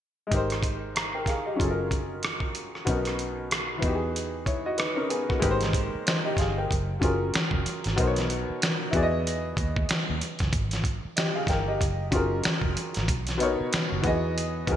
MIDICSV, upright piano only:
0, 0, Header, 1, 2, 480
1, 0, Start_track
1, 0, Tempo, 638298
1, 235, Time_signature, 4, 2, 24, 8
1, 11103, End_track
2, 0, Start_track
2, 0, Title_t, "Upright piano"
2, 0, Program_c, 0, 0
2, 201, Note_on_c, 0, 56, 57
2, 221, Note_on_c, 0, 63, 48
2, 239, Note_on_c, 0, 67, 51
2, 256, Note_on_c, 0, 70, 54
2, 274, Note_on_c, 0, 72, 60
2, 382, Control_c, 0, 64, 127
2, 707, Note_off_c, 0, 67, 0
2, 716, Note_off_c, 0, 70, 0
2, 716, Note_on_c, 0, 82, 45
2, 725, Note_off_c, 0, 72, 0
2, 849, Note_off_c, 0, 82, 0
2, 858, Note_on_c, 0, 79, 47
2, 863, Note_on_c, 0, 70, 46
2, 951, Note_off_c, 0, 79, 0
2, 954, Note_off_c, 0, 70, 0
2, 959, Note_on_c, 0, 77, 56
2, 961, Note_on_c, 0, 68, 47
2, 1091, Note_off_c, 0, 77, 0
2, 1092, Note_off_c, 0, 68, 0
2, 1099, Note_on_c, 0, 75, 44
2, 1102, Note_on_c, 0, 67, 37
2, 1158, Note_off_c, 0, 56, 0
2, 1159, Note_on_c, 0, 54, 59
2, 1168, Note_off_c, 0, 63, 0
2, 1176, Note_on_c, 0, 61, 57
2, 1194, Note_on_c, 0, 65, 56
2, 1204, Control_c, 0, 64, 0
2, 1215, Note_on_c, 0, 68, 52
2, 1234, Note_on_c, 0, 69, 55
2, 1272, Note_off_c, 0, 69, 0
2, 1283, Note_on_c, 0, 70, 62
2, 1325, Note_off_c, 0, 75, 0
2, 1327, Note_off_c, 0, 67, 0
2, 1354, Control_c, 0, 64, 127
2, 2117, Note_off_c, 0, 54, 0
2, 2126, Note_off_c, 0, 61, 0
2, 2135, Note_off_c, 0, 65, 0
2, 2142, Note_on_c, 0, 47, 62
2, 2146, Note_off_c, 0, 68, 0
2, 2151, Note_on_c, 0, 59, 57
2, 2159, Note_on_c, 0, 61, 55
2, 2164, Control_c, 0, 64, 0
2, 2166, Note_off_c, 0, 70, 0
2, 2168, Note_on_c, 0, 63, 50
2, 2177, Note_on_c, 0, 70, 64
2, 2299, Control_c, 0, 64, 127
2, 2839, Note_on_c, 0, 52, 62
2, 2846, Note_off_c, 0, 59, 0
2, 2857, Note_on_c, 0, 59, 55
2, 2866, Note_off_c, 0, 63, 0
2, 2868, Note_off_c, 0, 47, 0
2, 2877, Note_off_c, 0, 61, 0
2, 2877, Note_on_c, 0, 63, 56
2, 2884, Control_c, 0, 64, 0
2, 2886, Note_off_c, 0, 70, 0
2, 2895, Note_on_c, 0, 66, 58
2, 2914, Note_on_c, 0, 67, 58
2, 2952, Note_off_c, 0, 67, 0
2, 2961, Note_on_c, 0, 68, 64
2, 3035, Control_c, 0, 64, 127
2, 3336, Note_off_c, 0, 59, 0
2, 3346, Note_off_c, 0, 63, 0
2, 3355, Note_off_c, 0, 66, 0
2, 3355, Note_on_c, 0, 73, 49
2, 3360, Note_on_c, 0, 64, 45
2, 3389, Note_off_c, 0, 68, 0
2, 3488, Note_off_c, 0, 73, 0
2, 3492, Note_off_c, 0, 64, 0
2, 3503, Note_on_c, 0, 75, 62
2, 3505, Note_on_c, 0, 66, 53
2, 3594, Note_off_c, 0, 75, 0
2, 3594, Note_on_c, 0, 71, 57
2, 3595, Note_off_c, 0, 66, 0
2, 3597, Note_on_c, 0, 63, 51
2, 3728, Note_off_c, 0, 71, 0
2, 3730, Note_off_c, 0, 63, 0
2, 3732, Note_on_c, 0, 70, 57
2, 3737, Note_on_c, 0, 61, 50
2, 3828, Note_off_c, 0, 70, 0
2, 3830, Note_off_c, 0, 61, 0
2, 3833, Note_on_c, 0, 68, 60
2, 3836, Note_on_c, 0, 59, 49
2, 3967, Note_off_c, 0, 68, 0
2, 3969, Note_off_c, 0, 59, 0
2, 3977, Note_on_c, 0, 66, 53
2, 3982, Note_on_c, 0, 58, 44
2, 4032, Note_off_c, 0, 52, 0
2, 4056, Note_on_c, 0, 56, 77
2, 4065, Note_on_c, 0, 63, 63
2, 4072, Note_on_c, 0, 67, 65
2, 4084, Note_on_c, 0, 70, 67
2, 4085, Control_c, 0, 64, 0
2, 4093, Note_on_c, 0, 71, 64
2, 4141, Note_off_c, 0, 71, 0
2, 4142, Note_on_c, 0, 72, 80
2, 4205, Note_off_c, 0, 66, 0
2, 4207, Note_off_c, 0, 58, 0
2, 4214, Control_c, 0, 64, 127
2, 4418, Note_off_c, 0, 56, 0
2, 4423, Note_off_c, 0, 63, 0
2, 4426, Note_off_c, 0, 67, 0
2, 4432, Note_off_c, 0, 70, 0
2, 4461, Note_off_c, 0, 72, 0
2, 4561, Note_on_c, 0, 72, 53
2, 4564, Note_on_c, 0, 63, 40
2, 4692, Note_off_c, 0, 72, 0
2, 4693, Note_off_c, 0, 63, 0
2, 4701, Note_on_c, 0, 75, 59
2, 4704, Note_on_c, 0, 67, 51
2, 4792, Note_off_c, 0, 75, 0
2, 4794, Note_off_c, 0, 67, 0
2, 4805, Note_on_c, 0, 77, 60
2, 4809, Note_on_c, 0, 68, 52
2, 4934, Note_off_c, 0, 77, 0
2, 4936, Note_off_c, 0, 68, 0
2, 4947, Note_on_c, 0, 79, 49
2, 4949, Note_on_c, 0, 70, 38
2, 5043, Control_c, 0, 64, 0
2, 5170, Note_off_c, 0, 79, 0
2, 5171, Note_off_c, 0, 70, 0
2, 5189, Control_c, 0, 64, 127
2, 5261, Note_on_c, 0, 54, 68
2, 5270, Note_on_c, 0, 61, 61
2, 5282, Note_on_c, 0, 65, 62
2, 5288, Note_on_c, 0, 68, 61
2, 5295, Note_on_c, 0, 70, 74
2, 5564, Note_off_c, 0, 54, 0
2, 5569, Note_off_c, 0, 61, 0
2, 5575, Note_off_c, 0, 65, 0
2, 5578, Note_off_c, 0, 68, 0
2, 5581, Note_off_c, 0, 70, 0
2, 5986, Note_on_c, 0, 47, 71
2, 5993, Note_on_c, 0, 59, 59
2, 6002, Note_on_c, 0, 63, 59
2, 6003, Control_c, 0, 64, 0
2, 6011, Note_on_c, 0, 70, 65
2, 6022, Note_on_c, 0, 72, 60
2, 6066, Note_off_c, 0, 72, 0
2, 6071, Note_on_c, 0, 73, 72
2, 6141, Control_c, 0, 64, 127
2, 6343, Note_off_c, 0, 47, 0
2, 6347, Note_off_c, 0, 59, 0
2, 6351, Note_off_c, 0, 63, 0
2, 6355, Note_off_c, 0, 70, 0
2, 6386, Note_off_c, 0, 73, 0
2, 6700, Note_on_c, 0, 64, 79
2, 6711, Note_on_c, 0, 59, 68
2, 6722, Note_on_c, 0, 66, 72
2, 6723, Control_c, 0, 64, 0
2, 6730, Note_on_c, 0, 68, 72
2, 6741, Note_on_c, 0, 74, 71
2, 6785, Note_off_c, 0, 74, 0
2, 6788, Note_on_c, 0, 75, 88
2, 6841, Control_c, 0, 64, 127
2, 7586, Note_off_c, 0, 64, 0
2, 7591, Note_off_c, 0, 59, 0
2, 7597, Note_off_c, 0, 66, 0
2, 7601, Note_off_c, 0, 68, 0
2, 7630, Note_off_c, 0, 75, 0
2, 7925, Control_c, 0, 64, 0
2, 8051, Control_c, 0, 64, 127
2, 8395, Note_on_c, 0, 75, 51
2, 8403, Note_on_c, 0, 67, 45
2, 8529, Note_off_c, 0, 75, 0
2, 8533, Note_off_c, 0, 67, 0
2, 8537, Note_on_c, 0, 77, 60
2, 8541, Note_on_c, 0, 68, 51
2, 8631, Note_off_c, 0, 77, 0
2, 8633, Note_off_c, 0, 68, 0
2, 8640, Note_on_c, 0, 79, 63
2, 8644, Note_on_c, 0, 70, 54
2, 8771, Note_off_c, 0, 79, 0
2, 8774, Note_off_c, 0, 70, 0
2, 8783, Note_on_c, 0, 75, 52
2, 8785, Note_on_c, 0, 67, 46
2, 8884, Control_c, 0, 64, 0
2, 9007, Note_off_c, 0, 75, 0
2, 9008, Note_off_c, 0, 67, 0
2, 9008, Control_c, 0, 64, 127
2, 9103, Note_on_c, 0, 54, 68
2, 9111, Note_on_c, 0, 61, 58
2, 9120, Note_on_c, 0, 65, 59
2, 9132, Note_on_c, 0, 68, 61
2, 9140, Note_on_c, 0, 70, 78
2, 9405, Note_off_c, 0, 54, 0
2, 9409, Note_off_c, 0, 61, 0
2, 9414, Note_off_c, 0, 65, 0
2, 9420, Note_off_c, 0, 68, 0
2, 9424, Note_off_c, 0, 70, 0
2, 9843, Control_c, 0, 64, 0
2, 9980, Control_c, 0, 64, 127
2, 10058, Note_on_c, 0, 47, 74
2, 10068, Note_on_c, 0, 59, 70
2, 10079, Note_on_c, 0, 63, 64
2, 10086, Note_on_c, 0, 70, 67
2, 10097, Note_on_c, 0, 73, 80
2, 10540, Note_off_c, 0, 59, 0
2, 10540, Note_on_c, 0, 52, 75
2, 10546, Note_off_c, 0, 47, 0
2, 10551, Note_on_c, 0, 59, 73
2, 10557, Note_off_c, 0, 63, 0
2, 10560, Note_off_c, 0, 70, 0
2, 10562, Note_on_c, 0, 66, 67
2, 10563, Control_c, 0, 64, 0
2, 10566, Note_off_c, 0, 73, 0
2, 10571, Note_on_c, 0, 68, 71
2, 10578, Note_on_c, 0, 75, 87
2, 10688, Control_c, 0, 64, 127
2, 10986, Note_off_c, 0, 52, 0
2, 10992, Note_off_c, 0, 59, 0
2, 10997, Note_off_c, 0, 66, 0
2, 11002, Note_off_c, 0, 68, 0
2, 11006, Note_off_c, 0, 75, 0
2, 11028, Note_on_c, 0, 52, 64
2, 11035, Note_on_c, 0, 59, 55
2, 11046, Note_on_c, 0, 66, 52
2, 11053, Note_on_c, 0, 68, 58
2, 11061, Note_on_c, 0, 70, 67
2, 11103, Note_off_c, 0, 52, 0
2, 11103, Note_off_c, 0, 59, 0
2, 11103, Note_off_c, 0, 66, 0
2, 11103, Note_off_c, 0, 68, 0
2, 11103, Note_off_c, 0, 70, 0
2, 11103, End_track
0, 0, End_of_file